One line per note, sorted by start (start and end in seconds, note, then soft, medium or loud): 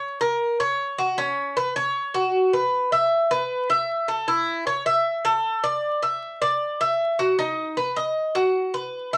0.00 0.20 C#5 medium
0.21 0.59 A#4 medium
0.60 0.97 C#5 medium
0.98 1.17 F#4 medium
1.18 1.55 C#4 medium
1.57 1.75 B4 medium
1.76 2.14 C#5 medium
2.14 2.52 F#4 medium
2.53 2.91 B4 medium
2.92 3.30 E5 medium
3.31 3.69 B4 medium
3.70 4.07 E5 medium
4.08 4.27 A4 medium
4.28 4.66 E4 medium
4.67 4.86 C#5 medium
4.86 5.24 E5 medium
5.25 5.62 A4 medium
5.64 6.01 D5 medium
6.03 6.40 E5 medium
6.42 6.79 D5 medium
6.81 7.18 E5 medium
7.19 7.38 F#4 medium
7.39 7.76 D#4 medium
7.77 7.96 B4 medium
7.96 8.34 D#5 medium
8.35 8.73 F#4 medium
8.74 9.12 B4 medium
9.13 9.18 E5 medium